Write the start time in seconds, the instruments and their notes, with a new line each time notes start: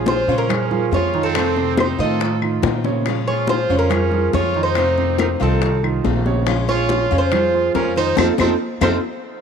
Already playing: upright bass A#1, grand piano F3 F4 G#4, steel-string acoustic guitar F3 G#3 C#4 F4
0.06 trumpet F4, cuban tres C5, high bongo, high conga
0.28 upright bass A#2, grand piano C#3 C#4 C#5, steel-string acoustic guitar G#3 C#4 F4, high bongo, high conga
0.37 trumpet C#4, cuban tres A#4
0.49 grand piano F3 F4 G#4, muted steel-string acoustic guitar stroke, high bongo, high conga, low conga, claves
0.71 grand piano F3 F4 G#4, high conga, low conga
0.91 upright bass F2, steel-string acoustic guitar F3 G#3 C#4 F4, trumpet F4, cuban tres C#5, high bongo, low bongo, high conga
1.14 grand piano D#3 D#4 F4, high bongo
1.23 trumpet C4, cuban tres A4
1.35 steel-string acoustic guitar C3 D#3 A3 C4 F4, grand piano C3 C4 C5, high bongo, high conga, claves
1.56 grand piano C3 C4 C5, high bongo, high conga
1.77 trumpet D#4, cuban tres C5, high bongo, high conga, claves
1.98 upright bass A2, grand piano D#3 D#4 F4, steel-string acoustic guitar D#3 A3 C4 F4, trumpet A4, cuban tres D#5, high bongo
2.20 muted steel-string acoustic guitar stroke, high bongo, high conga
2.42 grand piano D#3 D#4 F4, high conga, claves
2.62 upright bass A#2, steel-string acoustic guitar D#3 A3 C4 F4, high bongo, high conga
2.84 grand piano C#3 C#5, low bongo, high conga
3.05 steel-string acoustic guitar F3 G#3 C#4 F4, high bongo, high conga, claves
3.27 grand piano F3 F4 G#4, trumpet F4, cuban tres C#5, high bongo, high conga
3.47 trumpet F4, cuban tres C5, high bongo, high conga
3.69 upright bass F2, grand piano C#3 C#4 C#5, steel-string acoustic guitar G#3 C#4 F4, high bongo, high conga
3.78 trumpet C#4, cuban tres A#4
3.90 grand piano F3 F4 G#4, muted steel-string acoustic guitar stroke, high bongo, high conga, low conga, claves
4.12 grand piano F3 F4 G#4, high conga, low conga
4.33 upright bass F2, steel-string acoustic guitar F3 G#3 C#4 F4, trumpet F4, cuban tres C#5, high bongo, low bongo, high conga
4.54 grand piano D#3 D#4 F4, high bongo
4.63 trumpet D#4, cuban tres C5
4.75 steel-string acoustic guitar C3 D#3 A3 C4 F4, grand piano C3 C4 C5, high bongo, high conga, claves
4.98 grand piano C3 C4 C5, high bongo, high conga
5.19 trumpet D#4, cuban tres A#4, high bongo, high conga, claves
5.40 upright bass C2, grand piano D#3 D#4 F4, steel-string acoustic guitar D#3 A3 C4 F4, trumpet C4, cuban tres A4, high bongo
5.62 muted steel-string acoustic guitar stroke, high bongo, high conga
5.83 grand piano D#3 D#4 F4, high conga, claves
6.04 upright bass A#1, steel-string acoustic guitar D#3 A3 C4 F4, high bongo, low bongo, high conga
6.26 grand piano C#3 C#5, high bongo, high conga
6.46 steel-string acoustic guitar F3 G#3 C#4 F4, high bongo, high conga, claves
6.68 grand piano F3 F4 G#4, trumpet F4, cuban tres C#5, high bongo, high conga
6.89 high bongo, high conga
7.11 upright bass F2, grand piano C#3 C#4 C#5, steel-string acoustic guitar G#3 C#4 F4, high bongo, high conga
7.18 trumpet F4, cuban tres C5
7.32 grand piano F3 F4 G#4, muted steel-string acoustic guitar stroke, high bongo, high conga, low conga, claves
7.54 grand piano F3 F4 G#4, high conga
7.74 upright bass F2, steel-string acoustic guitar F3 G#3 C#4 F4, trumpet C#4, cuban tres A#4, high bongo, low bongo, high conga
7.96 grand piano D#3 D#4 F4, trumpet D#4, cuban tres C5, high bongo
8.17 upright bass F2, steel-string acoustic guitar F3 A3 C4, trumpet C4, grand piano C4 D#4 F4, cuban tres F4 A4 C5, low bongo, high conga, claves
8.38 upright bass F2, steel-string acoustic guitar F3 A3 C4, trumpet C4, grand piano C4 D#4 F4, cuban tres F4 A4 C5, low bongo, high conga, claves
8.81 upright bass F2, steel-string acoustic guitar F3 A3 C4, trumpet C4, grand piano C4 D#4 F4, cuban tres F4 A4 C5, low bongo, high conga, claves